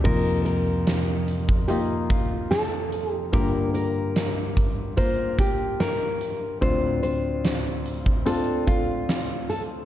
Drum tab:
CC |x---------------|----------------|----------------|
HH |--x-x-x-x-x-x-x-|x-x-x-x-x-x-x-x-|x-x-x-x-x-x-x-x-|
SD |----o-------o---|----o-------o---|----o-------o---|
BD |o------o--o-----|o-----o-o-o-----|o------o--o-----|